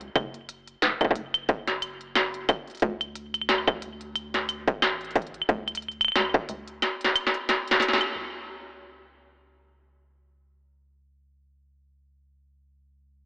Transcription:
0.01 closed hi-hat
0.16 F#1, kick, closed hi-hat, claves
0.34 closed hi-hat
0.49 closed hi-hat
0.68 closed hi-hat
0.82 F#1, snare, closed hi-hat
1.01 kick, closed hi-hat, claves
1.04 kick
1.11 kick
1.16 F#1, closed hi-hat
1.34 closed hi-hat, claves
1.49 kick, closed hi-hat
1.68 snare, closed hi-hat
1.82 closed hi-hat, claves
2.01 closed hi-hat
2.15 snare, closed hi-hat, claves
2.34 closed hi-hat
2.49 kick, closed hi-hat, claves
2.67 closed hi-hat
2.70 closed hi-hat
2.75 closed hi-hat
2.77 closed hi-hat
2.80 closed hi-hat
2.82 D2, kick, closed hi-hat
3.01 closed hi-hat, claves
3.15 closed hi-hat
3.34 closed hi-hat, claves
3.41 claves
3.49 snare, closed hi-hat, claves
3.58 claves
3.68 kick, closed hi-hat, claves
3.82 closed hi-hat
4.01 closed hi-hat
4.16 closed hi-hat, claves
4.34 snare, closed hi-hat
4.49 closed hi-hat, claves
4.68 A1, kick, closed hi-hat
4.82 snare, closed hi-hat, claves
5.01 closed hi-hat
5.05 closed hi-hat
5.11 closed hi-hat
5.16 kick, closed hi-hat
5.22 closed hi-hat
5.27 closed hi-hat
5.34 closed hi-hat
5.42 claves
5.49 D2, kick, closed hi-hat
5.68 closed hi-hat, claves
5.75 closed hi-hat, claves
5.82 closed hi-hat
5.88 closed hi-hat, claves
6.01 closed hi-hat, claves
6.05 claves
6.08 claves
6.12 snare, closed hi-hat, claves
6.16 D2, claves
6.20 claves
6.25 claves
6.30 claves
6.34 kick, closed hi-hat
6.49 D2, closed hi-hat
6.68 closed hi-hat
6.82 snare, closed hi-hat, claves
7.01 snare, closed hi-hat
7.16 closed hi-hat, claves
7.27 snare
7.34 closed hi-hat
7.49 snare, closed hi-hat
7.68 snare, closed hi-hat
7.80 snare, closed hi-hat
7.88 snare
7.93 snare
7.98 snare, closed hi-hat, claves
8.16 C#2

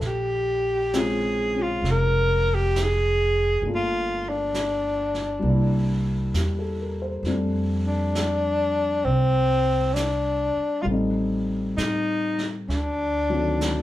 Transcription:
Already playing: A4
0.00 A#1, brush sweep, snare
0.07 G4
0.93 G#3 C4 C#4 F4, snare, hi-hat pedal
0.98 G#4
1.55 C#4 F4
1.62 F4
1.82 F1, brush sweep, snare
1.91 A#4
2.54 G4
2.76 snare, hi-hat pedal
2.84 G#4
3.62 G1 A3 A#3, brush sweep
3.66 D4 F4
3.75 F4
4.29 D4
4.54 snare, hi-hat pedal
5.14 snare
5.39 C2 G3 A#3
5.45 D4, brush sweep
5.50 E4
6.34 E2 G4, snare, hi-hat pedal
6.59 A4
6.81 A#4
7.02 C5
7.23 F2 G3 A3, brush sweep, snare
7.27 C4 D4
7.87 D4
8.15 snare, hi-hat pedal
9.05 C2 C4, brush sweep
9.94 D4, snare, hi-hat pedal
10.56 muted upright bass stroke
10.82 A1 G3 A3 F4
10.87 C4, brush sweep
10.92 D#4
11.77 A2 D#4, snare, hi-hat pedal
12.38 snare
12.68 D2 D4, brush sweep, snare
13.30 D#3 F#3 A3 C4
13.61 snare, hi-hat pedal

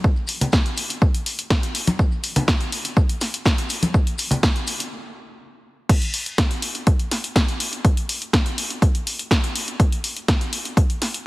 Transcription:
0.04 kick, maracas
0.16 maracas
0.27 open hi-hat, maracas
0.41 closed hi-hat, low conga, maracas
0.52 kick, snare, maracas
0.65 closed hi-hat, maracas
0.77 open hi-hat, maracas
0.89 closed hi-hat, maracas
1.02 kick, maracas
1.14 closed hi-hat, maracas
1.26 open hi-hat, maracas
1.39 closed hi-hat, maracas
1.50 kick, snare, maracas
1.63 closed hi-hat, maracas
1.75 open hi-hat, maracas
1.87 closed hi-hat, high conga, maracas
1.99 kick, maracas
2.11 maracas
2.24 open hi-hat, maracas
2.36 closed hi-hat, low conga, maracas
2.48 kick, snare, maracas
2.61 closed hi-hat, maracas
2.72 open hi-hat, maracas
2.85 closed hi-hat, maracas
2.97 kick, maracas
3.09 closed hi-hat, maracas
3.21 snare, open hi-hat, maracas
3.34 closed hi-hat, maracas
3.45 kick, snare, maracas
3.58 closed hi-hat, maracas
3.69 open hi-hat, maracas
3.82 closed hi-hat, high conga, maracas
3.94 kick, maracas
4.07 closed hi-hat, maracas
4.18 open hi-hat, maracas
4.31 closed hi-hat, low conga, maracas
4.43 kick, snare, maracas
4.55 closed hi-hat, maracas
4.67 open hi-hat, maracas
4.79 closed hi-hat, maracas
5.89 kick, closed hi-hat, crash
6.02 closed hi-hat
6.14 open hi-hat
6.26 closed hi-hat
6.38 kick, snare, closed hi-hat
6.51 closed hi-hat
6.62 open hi-hat
6.75 closed hi-hat
6.87 kick, closed hi-hat
6.99 closed hi-hat
7.11 snare, open hi-hat
7.24 closed hi-hat
7.36 kick, snare, closed hi-hat
7.48 closed hi-hat
7.60 open hi-hat
7.73 closed hi-hat
7.85 kick, closed hi-hat
7.97 closed hi-hat
8.09 open hi-hat
8.22 closed hi-hat
8.33 kick, snare, closed hi-hat
8.46 closed hi-hat
8.58 open hi-hat
8.70 closed hi-hat
8.82 kick, closed hi-hat
8.95 closed hi-hat
9.07 open hi-hat
9.19 closed hi-hat
9.31 kick, snare, closed hi-hat
9.44 closed hi-hat
9.56 open hi-hat
9.68 closed hi-hat
9.80 kick, closed hi-hat
9.92 closed hi-hat
10.04 open hi-hat
10.16 closed hi-hat
10.28 kick, snare, closed hi-hat
10.41 closed hi-hat
10.53 open hi-hat
10.65 closed hi-hat
10.77 kick, closed hi-hat
10.90 closed hi-hat
11.02 snare, open hi-hat
11.14 closed hi-hat

